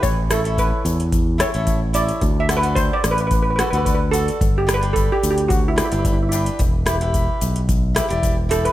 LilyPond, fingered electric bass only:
\new Staff \with { instrumentName = "Fingered electric bass" } { \clef bass \time 4/4 \key g \major \tempo 4 = 110 a,,4. e,4~ e,16 a,,4~ a,,16 | d,4. a,,4~ a,,16 d,4~ d,16 | g,,4. d,4~ d,16 g,,4~ g,,16 | e,,4. b,,4~ b,,16 e,,4~ e,,16 | }